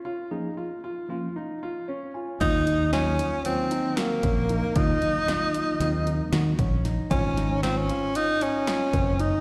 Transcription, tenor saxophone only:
X:1
M:9/8
L:1/16
Q:3/8=77
K:Ebdor
V:1 name="Tenor saxophone"
z16 z2 | E4 D4 C4 B,6 | E12 z6 | D4 C D3 E2 D6 E2 |]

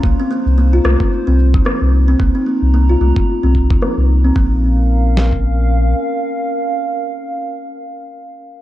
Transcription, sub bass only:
X:1
M:4/4
L:1/16
Q:"Swing 16ths" 1/4=111
K:Bbm
V:1 name="Sub bass" clef=bass
C,, z2 C,,3 C,, z2 C,,3 z C,,3 | C,, z2 C,,3 C,, z2 C,,3 z C,,3 | B,,,12 z4 | z16 |]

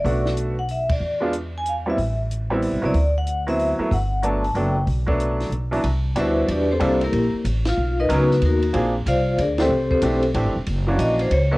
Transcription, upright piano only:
X:1
M:3/4
L:1/8
Q:"Swing" 1/4=186
K:Clyd
V:1 name="Upright piano"
[A,B,DF]3 z3 | z [^G,B,D=F] z3 [=G,B,CE] | z3 [G,B,CE]2 [F,B,CE] | z3 [F,B,CE]2 [F,A,B,E] |
z2 [F,A,B,D] z [F,A,B,D] z | z [F,A,B,D]3 z [C,,E,F,B,D] | z2 [B,,G,DEF]3 z | [G,_B,DEA] z4 z |
z2 [F,B,^C^D^A] z3 | [=F,_B,CD_A] z4 [E,=A,CDG] | z2 [E,A,CDG] z [E,A,CDG] z | z [E,^A,^CDF]3 z [F,=A,B,DF] |]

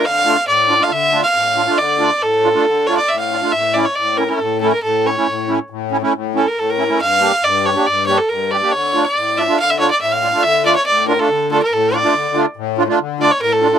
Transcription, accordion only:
X:1
M:4/4
L:1/16
Q:1/4=139
K:Dm
V:1 name="Accordion"
z2 [A,DF] z3 [DF] [A,DF] z2 [A,DF] z3 [DF] [A,DF] | z2 [A,DF] z3 [DF] [A,DF] z2 [A,DF] z3 [DF] [A,DF] | z2 [A,^CE] z3 [CE] [A,CE] z2 [A,CE] z3 [CE] [A,CE] | z2 [A,^CE] z3 [CE] [A,CE] z2 [A,CE] z3 [CE] [A,CE] |
z2 [B,DG] z3 [DG] [B,DG] z2 [B,DG] z3 [DG] [B,DG] | z2 [A,DF] z3 [DF] [A,DF] z2 [A,DF] z3 [DF] [A,DF] | z2 [A,DF] z3 [DF] [A,DF] z2 [A,DF] z3 [DF] [A,DF] | z2 [A,DF] z3 [DF] [A,DF] z2 [A,DF] z3 [DF] [A,DF] |]
V:2 name="Accordion" clef=bass
D,4 A,,4 D,4 A,,4 | D,4 A,,4 D,4 A,,4 | A,,4 A,,4 A,,4 A,,4 | A,,4 A,,4 A,,4 A,,4 |
G,,4 G,,4 G,,4 G,,4 | D,4 A,,4 D,4 A,,4 | D,4 A,,4 D,4 A,,4 | D,4 A,,4 D,4 A,,4 |]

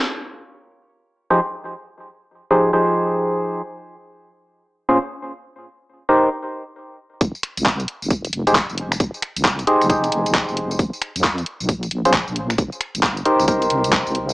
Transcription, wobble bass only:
X:1
M:4/4
L:1/16
Q:"Swing 16ths" 1/4=134
K:Fm
V:1 name="Wobble bass" clef=bass
z16 | z16 | z16 | z16 |
F,,, z2 C,,3 z F,,,3 F,,,3 F,,,3 | F,,, z2 C,,3 z F,,,3 F,,,3 F,,,3 | B,,, z2 F,,3 z B,,,3 B,,,3 B,,,3 | C,, z2 G,,,3 z C,,3 C,,3 C,,3 |]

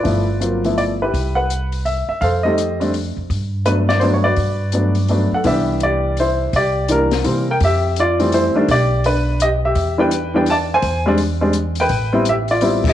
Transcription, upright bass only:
X:1
M:3/4
L:1/8
Q:"Swing" 1/4=167
K:G
V:1 name="Upright bass" clef=bass
G,,,6 | C,,4- C,, z | =F,,4- F,, F,, | G,,6 |
G,,4- G,, z | [K:C] C,,6 | C,,4 C,2 | F,,4- F,, z |
B,,,6 | E,,6 | E,,6 | A,,,6 |]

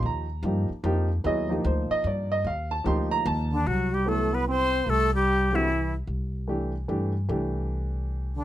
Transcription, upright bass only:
X:1
M:3/4
L:1/8
Q:"Swing" 1/4=149
K:Eblyd
V:1 name="Upright bass" clef=bass
E,,2 G,, z F,,2 | E,,2 D,, z G,,2 | E,,2 D,,2 E,,2 | [K:Clyd] C,,6 |
C,,6 | C,,4 G,,2 | C,,6 |]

